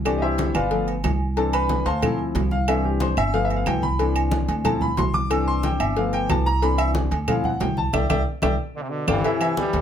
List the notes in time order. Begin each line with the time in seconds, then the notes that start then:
Already playing: C2
0.05 E3 C4 D4 G4 D5, cowbell, low agogo, claves
0.18 D#5
0.22 E4 G4 C5 E5, high conga
0.38 cowbell, high conga, low timbale, low agogo
0.55 G1 F4 B4 D5 F5, high conga, low agogo, claves
0.71 F3 A3 B3, cowbell, high conga
0.88 high conga, low agogo
1.04 C2, cowbell, high conga, low timbale, low agogo, claves
1.36 E3 C4 D4 A4 A5, cowbell, high conga, low agogo
1.53 B4 B5, high conga, low agogo, claves
1.69 cowbell, high conga, low timbale
1.86 D2 C5 F5 A5 C6, cowbell, high conga, low agogo
2.02 F3 C4 E4, cowbell, high conga, low conga, low agogo, claves
2.19 high conga
2.35 C2, cowbell, high conga, low timbale, low agogo
2.51 F5, high conga
2.67 E3 C4 D4 E5, cowbell, high conga, low agogo, claves
2.84 G4, high conga
3.00 C5, cowbell, high conga, low timbale, low agogo
3.17 G1 E5, high conga, low agogo, claves
3.34 F3 A3 B3 F5, cowbell, high conga
3.45 E5
3.50 high conga, low agogo
3.56 F5
3.66 C2 G5, cowbell, high conga, low timbale, low agogo, claves
3.83 B5, high conga
3.99 E3 C4 D4, cowbell, high conga, low agogo
4.15 high conga, low agogo, claves
4.31 cowbell, high conga, low timbale
4.48 D2, cowbell, high conga, low agogo
4.64 F3 C4 E4 A5, cowbell, high conga, low conga, low agogo, claves
4.81 B5, high conga, low conga
4.97 C2 C6, cowbell, high conga, low timbale, low agogo
5.14 D6, high conga
5.30 E3 C4 D4 E6, cowbell, high conga, low agogo, claves
5.46 C6, high conga
5.63 G5, cowbell, high conga, low timbale, low agogo
5.80 G1 E5, high conga, low agogo, claves
5.97 F3 A3 B3 F5, cowbell, high conga
6.13 G5, high conga, low agogo
6.29 C2 A5, cowbell, high conga, low timbale, low agogo, claves
6.46 A#5
6.62 E3 C4 D4 B5, cowbell, high conga, low agogo
6.78 E5, high conga, low agogo, claves
6.95 cowbell, high conga, low timbale
7.11 D2, cowbell, high conga, low agogo
7.28 F3 C4 E4 F5, cowbell, high conga, low conga, low agogo, claves
7.44 F#5, high conga, low conga
7.60 C2 G5, cowbell, high conga, low timbale, low agogo
7.77 A5, high conga
7.93 C2 D5 E5 G5, cowbell, high conga, high timbale, claves
8.10 C2 D5 E5 G5, cowbell, high conga, high timbale, claves
8.42 C2 D5 E5 G5, cowbell, high conga, high timbale, claves
8.76 B2 D3
8.82 C3
8.90 B2 D3
9.07 G1 C3 E3 D5 F5 G5, cowbell, high conga, high timbale, claves
9.24 E3 E4 E5, cowbell, high conga, low agogo
9.41 E3 E4 E5, high conga, low agogo, claves
9.57 E3 G3, cowbell, high conga, low timbale
9.73 D2 A3 A4 C5, cowbell, high conga, low agogo